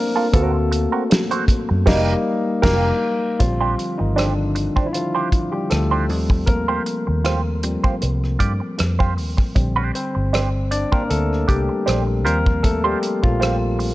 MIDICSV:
0, 0, Header, 1, 7, 480
1, 0, Start_track
1, 0, Key_signature, -2, "major"
1, 0, Tempo, 769231
1, 212, Time_signature, 4, 2, 24, 8
1, 8700, End_track
2, 0, Start_track
2, 0, Title_t, "Clean electric guitar"
2, 0, Program_c, 0, 27
2, 98, Note_on_c, 0, 69, 57
2, 103, Note_on_c, 0, 65, 54
2, 105, Note_on_c, 0, 58, 48
2, 163, Note_off_c, 0, 69, 0
2, 165, Note_off_c, 0, 65, 0
2, 166, Note_off_c, 0, 58, 0
2, 208, Note_on_c, 0, 60, 81
2, 213, Note_on_c, 0, 66, 81
2, 216, Note_on_c, 0, 70, 88
2, 330, Note_off_c, 0, 70, 0
2, 334, Note_off_c, 0, 66, 0
2, 343, Note_off_c, 0, 60, 0
2, 576, Note_on_c, 0, 70, 54
2, 578, Note_on_c, 0, 66, 48
2, 582, Note_on_c, 0, 60, 41
2, 641, Note_off_c, 0, 70, 0
2, 642, Note_off_c, 0, 66, 0
2, 643, Note_off_c, 0, 60, 0
2, 817, Note_on_c, 0, 72, 67
2, 820, Note_on_c, 0, 66, 64
2, 825, Note_on_c, 0, 60, 52
2, 898, Note_off_c, 0, 72, 0
2, 900, Note_off_c, 0, 66, 0
2, 902, Note_off_c, 0, 60, 0
2, 1160, Note_on_c, 0, 67, 85
2, 1163, Note_on_c, 0, 70, 91
2, 1166, Note_on_c, 0, 75, 87
2, 1328, Note_off_c, 0, 67, 0
2, 1331, Note_off_c, 0, 70, 0
2, 1332, Note_off_c, 0, 75, 0
2, 1637, Note_on_c, 0, 67, 78
2, 1643, Note_on_c, 0, 70, 80
2, 1645, Note_on_c, 0, 77, 81
2, 1806, Note_off_c, 0, 67, 0
2, 1810, Note_off_c, 0, 70, 0
2, 1811, Note_off_c, 0, 77, 0
2, 2250, Note_on_c, 0, 72, 61
2, 2252, Note_on_c, 0, 67, 61
2, 2255, Note_on_c, 0, 62, 51
2, 2332, Note_off_c, 0, 72, 0
2, 2334, Note_off_c, 0, 67, 0
2, 2335, Note_off_c, 0, 62, 0
2, 2597, Note_on_c, 0, 62, 66
2, 2603, Note_on_c, 0, 67, 65
2, 2606, Note_on_c, 0, 72, 78
2, 2695, Note_off_c, 0, 62, 0
2, 2698, Note_off_c, 0, 67, 0
2, 2700, Note_off_c, 0, 72, 0
2, 2970, Note_on_c, 0, 72, 51
2, 2972, Note_on_c, 0, 67, 44
2, 2976, Note_on_c, 0, 62, 44
2, 3035, Note_off_c, 0, 67, 0
2, 3035, Note_off_c, 0, 72, 0
2, 3038, Note_off_c, 0, 62, 0
2, 3211, Note_on_c, 0, 72, 61
2, 3217, Note_on_c, 0, 62, 50
2, 3217, Note_on_c, 0, 67, 57
2, 3293, Note_off_c, 0, 72, 0
2, 3295, Note_off_c, 0, 67, 0
2, 3296, Note_off_c, 0, 62, 0
2, 3689, Note_on_c, 0, 72, 59
2, 3693, Note_on_c, 0, 67, 55
2, 3696, Note_on_c, 0, 62, 54
2, 3772, Note_off_c, 0, 72, 0
2, 3773, Note_off_c, 0, 67, 0
2, 3775, Note_off_c, 0, 62, 0
2, 4170, Note_on_c, 0, 72, 63
2, 4173, Note_on_c, 0, 67, 61
2, 4176, Note_on_c, 0, 65, 53
2, 4252, Note_off_c, 0, 72, 0
2, 4254, Note_off_c, 0, 67, 0
2, 4255, Note_off_c, 0, 65, 0
2, 4521, Note_on_c, 0, 65, 64
2, 4525, Note_on_c, 0, 67, 60
2, 4529, Note_on_c, 0, 72, 66
2, 4617, Note_off_c, 0, 65, 0
2, 4619, Note_off_c, 0, 67, 0
2, 4621, Note_off_c, 0, 72, 0
2, 4890, Note_on_c, 0, 72, 53
2, 4895, Note_on_c, 0, 67, 50
2, 4898, Note_on_c, 0, 65, 41
2, 4955, Note_off_c, 0, 72, 0
2, 4958, Note_off_c, 0, 67, 0
2, 4959, Note_off_c, 0, 65, 0
2, 5236, Note_on_c, 0, 65, 47
2, 5241, Note_on_c, 0, 67, 45
2, 5242, Note_on_c, 0, 74, 55
2, 5314, Note_off_c, 0, 65, 0
2, 5317, Note_off_c, 0, 67, 0
2, 5317, Note_off_c, 0, 74, 0
2, 5610, Note_on_c, 0, 72, 71
2, 5615, Note_on_c, 0, 67, 65
2, 5617, Note_on_c, 0, 65, 57
2, 5693, Note_off_c, 0, 72, 0
2, 5695, Note_off_c, 0, 67, 0
2, 5696, Note_off_c, 0, 65, 0
2, 6090, Note_on_c, 0, 72, 71
2, 6094, Note_on_c, 0, 67, 64
2, 6097, Note_on_c, 0, 62, 55
2, 6191, Note_off_c, 0, 62, 0
2, 6195, Note_off_c, 0, 67, 0
2, 6195, Note_off_c, 0, 72, 0
2, 6447, Note_on_c, 0, 62, 65
2, 6449, Note_on_c, 0, 67, 62
2, 6453, Note_on_c, 0, 72, 70
2, 6541, Note_off_c, 0, 62, 0
2, 6543, Note_off_c, 0, 67, 0
2, 6544, Note_off_c, 0, 72, 0
2, 6814, Note_on_c, 0, 72, 52
2, 6815, Note_on_c, 0, 67, 46
2, 6818, Note_on_c, 0, 62, 40
2, 6878, Note_off_c, 0, 72, 0
2, 6879, Note_off_c, 0, 67, 0
2, 6880, Note_off_c, 0, 62, 0
2, 7162, Note_on_c, 0, 62, 48
2, 7167, Note_on_c, 0, 67, 49
2, 7172, Note_on_c, 0, 74, 54
2, 7239, Note_off_c, 0, 62, 0
2, 7241, Note_off_c, 0, 67, 0
2, 7243, Note_off_c, 0, 74, 0
2, 7400, Note_on_c, 0, 62, 60
2, 7404, Note_on_c, 0, 67, 76
2, 7408, Note_on_c, 0, 72, 76
2, 7499, Note_off_c, 0, 62, 0
2, 7500, Note_off_c, 0, 67, 0
2, 7502, Note_off_c, 0, 72, 0
2, 7642, Note_on_c, 0, 65, 52
2, 7645, Note_on_c, 0, 67, 50
2, 7649, Note_on_c, 0, 72, 59
2, 7719, Note_off_c, 0, 65, 0
2, 7720, Note_off_c, 0, 67, 0
2, 7722, Note_off_c, 0, 72, 0
2, 8012, Note_on_c, 0, 72, 70
2, 8015, Note_on_c, 0, 67, 55
2, 8018, Note_on_c, 0, 65, 54
2, 8096, Note_off_c, 0, 72, 0
2, 8097, Note_off_c, 0, 67, 0
2, 8099, Note_off_c, 0, 65, 0
2, 8360, Note_on_c, 0, 65, 60
2, 8365, Note_on_c, 0, 67, 61
2, 8367, Note_on_c, 0, 72, 68
2, 8459, Note_off_c, 0, 65, 0
2, 8462, Note_off_c, 0, 67, 0
2, 8463, Note_off_c, 0, 72, 0
2, 8700, End_track
3, 0, Start_track
3, 0, Title_t, "Tine electric piano"
3, 0, Program_c, 1, 4
3, 0, Control_c, 1, 64, 127
3, 0, Note_on_c, 1, 58, 72
3, 0, Note_on_c, 1, 60, 78
3, 0, Note_on_c, 1, 62, 81
3, 0, Note_on_c, 1, 70, 97
3, 0, Note_on_c, 1, 72, 100
3, 0, Note_on_c, 1, 74, 97
3, 189, Note_off_c, 1, 58, 0
3, 208, Note_on_c, 1, 69, 83
3, 210, Note_on_c, 1, 58, 57
3, 215, Note_off_c, 1, 60, 0
3, 215, Note_on_c, 1, 60, 53
3, 217, Note_on_c, 1, 66, 63
3, 219, Control_c, 1, 64, 0
3, 220, Note_on_c, 1, 57, 67
3, 224, Note_off_c, 1, 62, 0
3, 224, Note_off_c, 1, 70, 0
3, 225, Note_off_c, 1, 72, 0
3, 225, Note_off_c, 1, 74, 0
3, 316, Control_c, 1, 64, 127
3, 535, Note_off_c, 1, 58, 0
3, 538, Note_off_c, 1, 60, 0
3, 539, Note_off_c, 1, 66, 0
3, 1140, Note_off_c, 1, 69, 0
3, 1146, Note_off_c, 1, 57, 0
3, 1167, Note_on_c, 1, 55, 93
3, 1172, Note_on_c, 1, 58, 99
3, 1174, Control_c, 1, 64, 0
3, 1174, Note_on_c, 1, 63, 98
3, 1291, Control_c, 1, 64, 127
3, 1333, Note_off_c, 1, 55, 0
3, 1335, Note_off_c, 1, 58, 0
3, 1337, Note_off_c, 1, 63, 0
3, 1637, Note_on_c, 1, 70, 96
3, 1652, Note_on_c, 1, 58, 96
3, 1806, Note_off_c, 1, 70, 0
3, 1815, Note_off_c, 1, 58, 0
3, 2118, Note_on_c, 1, 65, 85
3, 2122, Note_on_c, 1, 50, 47
3, 2126, Note_on_c, 1, 55, 45
3, 2130, Note_on_c, 1, 60, 55
3, 2131, Control_c, 1, 64, 0
3, 2132, Note_on_c, 1, 53, 66
3, 2226, Control_c, 1, 64, 127
3, 2472, Note_off_c, 1, 53, 0
3, 2483, Note_on_c, 1, 63, 70
3, 2497, Note_on_c, 1, 51, 58
3, 2501, Note_off_c, 1, 65, 0
3, 2595, Note_on_c, 1, 62, 76
3, 2598, Note_off_c, 1, 51, 0
3, 2601, Note_off_c, 1, 50, 0
3, 2601, Note_off_c, 1, 63, 0
3, 2608, Note_on_c, 1, 50, 60
3, 2819, Note_off_c, 1, 55, 0
3, 2821, Note_off_c, 1, 60, 0
3, 3013, Note_off_c, 1, 62, 0
3, 3020, Note_off_c, 1, 50, 0
3, 3034, Note_on_c, 1, 64, 68
3, 3076, Note_on_c, 1, 65, 80
3, 3078, Note_off_c, 1, 64, 0
3, 3088, Note_on_c, 1, 53, 62
3, 3430, Note_off_c, 1, 53, 0
3, 3444, Note_on_c, 1, 67, 78
3, 3456, Note_on_c, 1, 55, 56
3, 3460, Note_off_c, 1, 65, 0
3, 3550, Note_off_c, 1, 67, 0
3, 3557, Note_off_c, 1, 55, 0
3, 3557, Note_on_c, 1, 69, 80
3, 3571, Note_on_c, 1, 57, 65
3, 3799, Note_on_c, 1, 53, 48
3, 3803, Note_on_c, 1, 55, 43
3, 3807, Note_on_c, 1, 60, 52
3, 3810, Control_c, 1, 64, 0
3, 3911, Control_c, 1, 64, 127
3, 4022, Note_off_c, 1, 57, 0
3, 4033, Note_on_c, 1, 70, 86
3, 4047, Note_on_c, 1, 58, 60
3, 4054, Note_off_c, 1, 69, 0
3, 4754, Note_off_c, 1, 53, 0
3, 4758, Note_off_c, 1, 55, 0
3, 4761, Note_off_c, 1, 60, 0
3, 4762, Note_on_c, 1, 53, 46
3, 4766, Note_on_c, 1, 55, 41
3, 4768, Note_on_c, 1, 60, 50
3, 4979, Note_off_c, 1, 53, 0
3, 4981, Note_off_c, 1, 55, 0
3, 4982, Note_off_c, 1, 60, 0
3, 5454, Note_off_c, 1, 70, 0
3, 5461, Note_off_c, 1, 58, 0
3, 5962, Note_on_c, 1, 50, 51
3, 5967, Note_on_c, 1, 55, 48
3, 5971, Note_on_c, 1, 60, 56
3, 5973, Control_c, 1, 64, 0
3, 6092, Control_c, 1, 64, 127
3, 6207, Note_off_c, 1, 60, 0
3, 6209, Note_on_c, 1, 72, 84
3, 6214, Note_on_c, 1, 60, 69
3, 6665, Note_off_c, 1, 60, 0
3, 6684, Note_on_c, 1, 74, 97
3, 6691, Note_on_c, 1, 62, 77
3, 6702, Note_off_c, 1, 72, 0
3, 6805, Note_off_c, 1, 74, 0
3, 6809, Note_off_c, 1, 62, 0
3, 6816, Note_on_c, 1, 70, 88
3, 6821, Note_on_c, 1, 58, 70
3, 6921, Note_off_c, 1, 58, 0
3, 6928, Note_on_c, 1, 69, 92
3, 6929, Note_off_c, 1, 70, 0
3, 6933, Note_on_c, 1, 57, 68
3, 7035, Note_off_c, 1, 69, 0
3, 7039, Note_off_c, 1, 57, 0
3, 7164, Note_off_c, 1, 55, 0
3, 7164, Note_on_c, 1, 67, 84
3, 7172, Note_on_c, 1, 55, 72
3, 7620, Note_off_c, 1, 50, 0
3, 7621, Note_off_c, 1, 67, 0
3, 7625, Note_off_c, 1, 55, 0
3, 7644, Note_on_c, 1, 53, 48
3, 7644, Note_on_c, 1, 70, 89
3, 7647, Note_on_c, 1, 55, 43
3, 7651, Note_on_c, 1, 60, 59
3, 7652, Note_on_c, 1, 58, 65
3, 7655, Control_c, 1, 64, 0
3, 7754, Control_c, 1, 64, 127
3, 7869, Note_off_c, 1, 70, 0
3, 7873, Note_off_c, 1, 58, 0
3, 7882, Note_on_c, 1, 69, 87
3, 7890, Note_on_c, 1, 57, 72
3, 7972, Note_off_c, 1, 53, 0
3, 7974, Note_off_c, 1, 55, 0
3, 7976, Note_off_c, 1, 60, 0
3, 8005, Note_off_c, 1, 69, 0
3, 8009, Note_off_c, 1, 57, 0
3, 8012, Note_on_c, 1, 67, 82
3, 8022, Note_on_c, 1, 55, 65
3, 8238, Note_off_c, 1, 67, 0
3, 8243, Note_off_c, 1, 55, 0
3, 8258, Note_on_c, 1, 65, 80
3, 8265, Note_on_c, 1, 53, 65
3, 8700, Note_off_c, 1, 53, 0
3, 8700, Note_off_c, 1, 65, 0
3, 8700, End_track
4, 0, Start_track
4, 0, Title_t, "Fingered electric bass"
4, 0, Program_c, 2, 33
4, 213, Note_on_c, 2, 38, 98
4, 536, Note_off_c, 2, 38, 0
4, 1066, Note_on_c, 2, 42, 87
4, 1159, Note_off_c, 2, 42, 0
4, 1169, Note_on_c, 2, 29, 101
4, 1334, Note_off_c, 2, 29, 0
4, 1649, Note_on_c, 2, 29, 100
4, 1813, Note_off_c, 2, 29, 0
4, 2125, Note_on_c, 2, 34, 90
4, 2335, Note_off_c, 2, 34, 0
4, 2500, Note_on_c, 2, 31, 79
4, 2918, Note_off_c, 2, 31, 0
4, 3569, Note_on_c, 2, 38, 81
4, 3809, Note_off_c, 2, 38, 0
4, 3809, Note_on_c, 2, 39, 90
4, 4229, Note_off_c, 2, 39, 0
4, 4421, Note_on_c, 2, 39, 74
4, 4840, Note_off_c, 2, 39, 0
4, 5012, Note_on_c, 2, 36, 84
4, 5220, Note_off_c, 2, 36, 0
4, 5244, Note_on_c, 2, 43, 78
4, 5358, Note_off_c, 2, 43, 0
4, 5492, Note_on_c, 2, 41, 84
4, 5732, Note_off_c, 2, 41, 0
4, 5732, Note_on_c, 2, 39, 78
4, 5843, Note_off_c, 2, 39, 0
4, 5967, Note_on_c, 2, 34, 93
4, 6177, Note_off_c, 2, 34, 0
4, 6342, Note_on_c, 2, 31, 90
4, 6761, Note_off_c, 2, 31, 0
4, 6931, Note_on_c, 2, 38, 81
4, 7140, Note_off_c, 2, 38, 0
4, 7171, Note_on_c, 2, 36, 73
4, 7283, Note_off_c, 2, 36, 0
4, 7412, Note_on_c, 2, 34, 82
4, 7651, Note_off_c, 2, 34, 0
4, 7651, Note_on_c, 2, 39, 98
4, 8072, Note_off_c, 2, 39, 0
4, 8261, Note_on_c, 2, 34, 80
4, 8682, Note_off_c, 2, 34, 0
4, 8700, End_track
5, 0, Start_track
5, 0, Title_t, "Muted clean electric guitar strokes"
5, 338, Note_on_c, 9, 29, 38
5, 400, Note_off_c, 9, 29, 0
5, 445, Note_on_c, 9, 29, 40
5, 508, Note_off_c, 9, 29, 0
5, 688, Note_on_c, 9, 29, 42
5, 750, Note_off_c, 9, 29, 0
5, 931, Note_on_c, 9, 29, 38
5, 993, Note_off_c, 9, 29, 0
5, 1053, Note_on_c, 9, 29, 46
5, 1116, Note_off_c, 9, 29, 0
5, 2122, Note_on_c, 9, 29, 30
5, 2185, Note_off_c, 9, 29, 0
5, 2363, Note_on_c, 9, 29, 38
5, 2426, Note_off_c, 9, 29, 0
5, 2490, Note_on_c, 9, 29, 34
5, 2552, Note_off_c, 9, 29, 0
5, 2840, Note_on_c, 9, 29, 34
5, 2902, Note_off_c, 9, 29, 0
5, 3084, Note_on_c, 9, 29, 34
5, 3146, Note_off_c, 9, 29, 0
5, 3320, Note_on_c, 9, 29, 36
5, 3383, Note_off_c, 9, 29, 0
5, 3448, Note_on_c, 9, 29, 43
5, 3511, Note_off_c, 9, 29, 0
5, 3559, Note_on_c, 9, 29, 32
5, 3622, Note_off_c, 9, 29, 0
5, 3804, Note_on_c, 9, 29, 31
5, 3866, Note_off_c, 9, 29, 0
5, 3933, Note_on_c, 9, 29, 38
5, 3995, Note_off_c, 9, 29, 0
5, 4041, Note_on_c, 9, 29, 35
5, 4104, Note_off_c, 9, 29, 0
5, 4281, Note_on_c, 9, 29, 38
5, 4344, Note_off_c, 9, 29, 0
5, 4412, Note_on_c, 9, 29, 30
5, 4474, Note_off_c, 9, 29, 0
5, 4764, Note_on_c, 9, 29, 37
5, 4827, Note_off_c, 9, 29, 0
5, 5003, Note_on_c, 9, 29, 39
5, 5065, Note_off_c, 9, 29, 0
5, 5367, Note_on_c, 9, 29, 38
5, 5429, Note_off_c, 9, 29, 0
5, 5480, Note_on_c, 9, 29, 35
5, 5542, Note_off_c, 9, 29, 0
5, 5726, Note_on_c, 9, 29, 35
5, 5788, Note_off_c, 9, 29, 0
5, 5850, Note_on_c, 9, 29, 46
5, 5912, Note_off_c, 9, 29, 0
5, 5962, Note_on_c, 9, 29, 36
5, 6024, Note_off_c, 9, 29, 0
5, 6203, Note_on_c, 9, 29, 32
5, 6265, Note_off_c, 9, 29, 0
5, 6333, Note_on_c, 9, 29, 29
5, 6395, Note_off_c, 9, 29, 0
5, 6684, Note_on_c, 9, 29, 30
5, 6746, Note_off_c, 9, 29, 0
5, 6923, Note_on_c, 9, 29, 29
5, 6986, Note_off_c, 9, 29, 0
5, 7294, Note_on_c, 9, 29, 41
5, 7357, Note_off_c, 9, 29, 0
5, 7778, Note_on_c, 9, 29, 34
5, 7840, Note_off_c, 9, 29, 0
5, 7885, Note_on_c, 9, 29, 36
5, 7947, Note_off_c, 9, 29, 0
5, 8254, Note_on_c, 9, 29, 39
5, 8316, Note_off_c, 9, 29, 0
5, 8604, Note_on_c, 9, 29, 35
5, 8666, Note_off_c, 9, 29, 0
5, 8700, End_track
6, 0, Start_track
6, 0, Title_t, "Muted fingered electric bass strokes"
6, 926, Note_on_c, 9, 29, 49
6, 989, Note_off_c, 9, 29, 0
6, 8700, End_track
7, 0, Start_track
7, 0, Title_t, "Drums"
7, 210, Note_on_c, 9, 36, 106
7, 210, Note_on_c, 9, 42, 95
7, 272, Note_off_c, 9, 36, 0
7, 273, Note_off_c, 9, 42, 0
7, 452, Note_on_c, 9, 42, 64
7, 514, Note_off_c, 9, 42, 0
7, 693, Note_on_c, 9, 42, 83
7, 701, Note_on_c, 9, 38, 113
7, 756, Note_off_c, 9, 42, 0
7, 763, Note_off_c, 9, 38, 0
7, 819, Note_on_c, 9, 42, 52
7, 881, Note_off_c, 9, 42, 0
7, 924, Note_on_c, 9, 36, 90
7, 927, Note_on_c, 9, 42, 76
7, 987, Note_off_c, 9, 36, 0
7, 989, Note_off_c, 9, 42, 0
7, 1167, Note_on_c, 9, 36, 100
7, 1168, Note_on_c, 9, 49, 81
7, 1177, Note_on_c, 9, 38, 91
7, 1229, Note_off_c, 9, 36, 0
7, 1230, Note_off_c, 9, 49, 0
7, 1240, Note_off_c, 9, 38, 0
7, 1643, Note_on_c, 9, 49, 76
7, 1644, Note_on_c, 9, 36, 105
7, 1652, Note_on_c, 9, 38, 100
7, 1705, Note_off_c, 9, 49, 0
7, 1707, Note_off_c, 9, 36, 0
7, 1714, Note_off_c, 9, 38, 0
7, 2122, Note_on_c, 9, 42, 88
7, 2123, Note_on_c, 9, 36, 97
7, 2184, Note_off_c, 9, 42, 0
7, 2186, Note_off_c, 9, 36, 0
7, 2366, Note_on_c, 9, 42, 55
7, 2428, Note_off_c, 9, 42, 0
7, 2608, Note_on_c, 9, 42, 66
7, 2615, Note_on_c, 9, 37, 96
7, 2671, Note_off_c, 9, 42, 0
7, 2678, Note_off_c, 9, 37, 0
7, 2844, Note_on_c, 9, 42, 64
7, 2906, Note_off_c, 9, 42, 0
7, 2974, Note_on_c, 9, 36, 86
7, 3036, Note_off_c, 9, 36, 0
7, 3085, Note_on_c, 9, 42, 75
7, 3148, Note_off_c, 9, 42, 0
7, 3321, Note_on_c, 9, 36, 88
7, 3323, Note_on_c, 9, 42, 61
7, 3384, Note_off_c, 9, 36, 0
7, 3386, Note_off_c, 9, 42, 0
7, 3561, Note_on_c, 9, 42, 72
7, 3570, Note_on_c, 9, 37, 93
7, 3624, Note_off_c, 9, 42, 0
7, 3633, Note_off_c, 9, 37, 0
7, 3803, Note_on_c, 9, 46, 41
7, 3866, Note_off_c, 9, 46, 0
7, 3930, Note_on_c, 9, 36, 83
7, 3992, Note_off_c, 9, 36, 0
7, 4039, Note_on_c, 9, 42, 84
7, 4041, Note_on_c, 9, 36, 102
7, 4101, Note_off_c, 9, 42, 0
7, 4103, Note_off_c, 9, 36, 0
7, 4283, Note_on_c, 9, 42, 54
7, 4345, Note_off_c, 9, 42, 0
7, 4523, Note_on_c, 9, 42, 66
7, 4530, Note_on_c, 9, 37, 95
7, 4585, Note_off_c, 9, 42, 0
7, 4592, Note_off_c, 9, 37, 0
7, 4762, Note_on_c, 9, 42, 64
7, 4824, Note_off_c, 9, 42, 0
7, 4893, Note_on_c, 9, 36, 82
7, 4955, Note_off_c, 9, 36, 0
7, 5004, Note_on_c, 9, 42, 70
7, 5066, Note_off_c, 9, 42, 0
7, 5140, Note_on_c, 9, 37, 27
7, 5203, Note_off_c, 9, 37, 0
7, 5242, Note_on_c, 9, 36, 84
7, 5243, Note_on_c, 9, 42, 64
7, 5305, Note_off_c, 9, 36, 0
7, 5306, Note_off_c, 9, 42, 0
7, 5483, Note_on_c, 9, 42, 76
7, 5492, Note_on_c, 9, 37, 88
7, 5545, Note_off_c, 9, 42, 0
7, 5554, Note_off_c, 9, 37, 0
7, 5617, Note_on_c, 9, 36, 79
7, 5680, Note_off_c, 9, 36, 0
7, 5728, Note_on_c, 9, 46, 39
7, 5791, Note_off_c, 9, 46, 0
7, 5855, Note_on_c, 9, 36, 82
7, 5866, Note_on_c, 9, 37, 35
7, 5917, Note_off_c, 9, 36, 0
7, 5929, Note_off_c, 9, 37, 0
7, 5965, Note_on_c, 9, 36, 100
7, 5966, Note_on_c, 9, 42, 83
7, 6027, Note_off_c, 9, 36, 0
7, 6028, Note_off_c, 9, 42, 0
7, 6209, Note_on_c, 9, 42, 56
7, 6272, Note_off_c, 9, 42, 0
7, 6452, Note_on_c, 9, 42, 71
7, 6459, Note_on_c, 9, 37, 100
7, 6514, Note_off_c, 9, 42, 0
7, 6521, Note_off_c, 9, 37, 0
7, 6687, Note_on_c, 9, 42, 64
7, 6749, Note_off_c, 9, 42, 0
7, 6817, Note_on_c, 9, 36, 87
7, 6880, Note_off_c, 9, 36, 0
7, 6930, Note_on_c, 9, 42, 74
7, 6992, Note_off_c, 9, 42, 0
7, 7069, Note_on_c, 9, 37, 28
7, 7132, Note_off_c, 9, 37, 0
7, 7168, Note_on_c, 9, 36, 83
7, 7173, Note_on_c, 9, 42, 62
7, 7230, Note_off_c, 9, 36, 0
7, 7236, Note_off_c, 9, 42, 0
7, 7411, Note_on_c, 9, 42, 81
7, 7420, Note_on_c, 9, 37, 90
7, 7473, Note_off_c, 9, 42, 0
7, 7482, Note_off_c, 9, 37, 0
7, 7653, Note_on_c, 9, 42, 52
7, 7716, Note_off_c, 9, 42, 0
7, 7778, Note_on_c, 9, 36, 85
7, 7840, Note_off_c, 9, 36, 0
7, 7888, Note_on_c, 9, 36, 97
7, 7888, Note_on_c, 9, 42, 87
7, 7950, Note_off_c, 9, 36, 0
7, 7950, Note_off_c, 9, 42, 0
7, 8130, Note_on_c, 9, 42, 57
7, 8192, Note_off_c, 9, 42, 0
7, 8259, Note_on_c, 9, 36, 82
7, 8321, Note_off_c, 9, 36, 0
7, 8375, Note_on_c, 9, 42, 70
7, 8382, Note_on_c, 9, 37, 100
7, 8437, Note_off_c, 9, 42, 0
7, 8444, Note_off_c, 9, 37, 0
7, 8610, Note_on_c, 9, 46, 48
7, 8673, Note_off_c, 9, 46, 0
7, 8700, End_track
0, 0, End_of_file